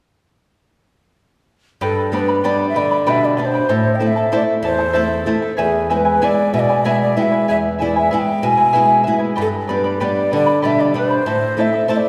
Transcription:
1.81 nylon-string guitar G2, charango G4 B4 D5 G5 B5, quena A4
2.12 nylon-string guitar G3 B3 D4, charango B4 D5 G5 B5, quena C5
2.19 quena B4
2.28 charango B4 D5 B5
2.44 nylon-string guitar G3 B3 D4, charango G4 B4 D5 G5 B5, quena D5
2.69 quena E5
2.74 nylon-string guitar D3, charango B4 D5 G5 B5, quena D5
2.91 charango B4 D5 B5
3.06 nylon-string guitar B2 G3 D4, charango G4 B4 D5 G5 B5, quena E5
3.24 quena D5
3.37 nylon-string guitar G3 D4, charango B4 D5 G5 B5, quena D5
3.45 quena C5
3.54 charango B4 D5 B5
3.69 nylon-string guitar A2, charango E4 A4 C5 E5 A5
3.95 quena G5
4.00 nylon-string guitar A3 C4 E4, charango E4 A4 E5 A5, quena G5
4.07 quena E5
4.16 charango E4 A4 A5
4.32 nylon-string guitar A3 C4 E4, charango E4 A4 C5 E5 A5, quena D5
4.63 nylon-string guitar E2, charango E4 A4 E5 A5, quena C5
4.79 charango E4 A4 A5
4.93 nylon-string guitar A3 C4 E4, charango E4 A4 C5 E5 A5
5.26 nylon-string guitar A3 C4 E4, charango E4 A4 E5 A5
5.42 charango E4 A4 A5
5.57 nylon-string guitar E2, charango E4 G#4 B4 E5 G#5
5.61 quena G#4
5.90 nylon-string guitar G#3 B3 E4, charango E4 B4 E5 G#5, quena C5
5.97 quena B4
6.05 charango E4 B4 G#5
6.22 nylon-string guitar G#3 B3 E4, charango E4 G#4 B4 E5 G#5, quena D5
6.53 nylon-string guitar B2, charango E4 B4 E5 G#5, quena E5
6.59 quena D5
6.69 charango E4 B4 G#5
6.84 nylon-string guitar G#3 B3 E4, charango E4 G#4 B4 E5 G#5, quena E5
7.02 quena D5
7.16 nylon-string guitar G#3 B3 E4, charango E4 B4 E5 G#5, quena G5
7.22 quena E5
7.32 charango E4 B4 G#5
7.48 nylon-string guitar E2, charango E4 G#4 B4 E5 G#5, quena E5
7.78 nylon-string guitar G#3 B3 E4, charango E4 B4 E5 G#5, quena D5
7.96 charango E4 B4 G#5, quena E5
8.11 nylon-string guitar G#3 B3 E4, charango E4 G#4 B4 E5, quena G#5
8.18 quena G5
8.42 nylon-string guitar B2, charango E4 B4 E5 G#5, quena G#5
8.57 charango E4 B4 G#5
8.73 nylon-string guitar G#3 B3 E4, charango E4 G#4 B4 E5 G#5
9.03 nylon-string guitar G#3, charango E4 B4 E5 G#5
9.08 nylon-string guitar B3 E4
9.19 charango E4 B4 G#5
9.36 nylon-string guitar G2, charango G4 B4 D5 G5 B5
9.41 quena A4
9.67 nylon-string guitar G3 B3 D4, charango B4 D5 G5 B5
9.73 quena B4
9.84 charango B4 D5 B5
10.00 nylon-string guitar G3 B3 D4, charango G4 B4 D5 G5 B5, quena D5
10.31 nylon-string guitar D3, charango B4 D5 G5 B5, quena D5
10.46 charango B4 D5 B5
10.62 nylon-string guitar B2 G3 D4, charango G4 B4 D5 G5 B5, quena E5
10.80 quena D5
10.94 nylon-string guitar G3 D4, charango B4 D5 G5 B5, quena B4
11.08 charango B4 D5 B5, quena C5
11.26 nylon-string guitar A2, charango E4 A4 C5 E5 A5
11.57 nylon-string guitar A3 C4 E4, charango E4 A4 E5 A5, quena E5
11.73 charango E4 A4 A5
11.88 nylon-string guitar A3 C4 E4, charango E4 A4 C5 E5 A5, quena E5
11.96 quena D5

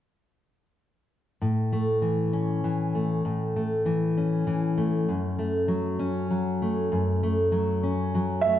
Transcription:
1.42 steel-string acoustic guitar A2
1.73 steel-string acoustic guitar A3
2.02 steel-string acoustic guitar E3
2.33 steel-string acoustic guitar C#4
2.64 steel-string acoustic guitar E3
2.95 steel-string acoustic guitar A3
3.25 steel-string acoustic guitar A2
3.56 steel-string acoustic guitar A3
3.86 steel-string acoustic guitar E3
4.17 steel-string acoustic guitar C#4
4.47 steel-string acoustic guitar E3
4.78 steel-string acoustic guitar A3
5.09 steel-string acoustic guitar F#2
5.39 steel-string acoustic guitar A3
5.68 steel-string acoustic guitar F#3
5.99 steel-string acoustic guitar C#4
6.31 steel-string acoustic guitar F#3
6.62 steel-string acoustic guitar A3
6.92 steel-string acoustic guitar F#2
7.23 steel-string acoustic guitar A3
7.52 steel-string acoustic guitar F#3
7.83 steel-string acoustic guitar C#4
8.15 steel-string acoustic guitar F#3
8.41 steel-string acoustic guitar A3, upright piano E5

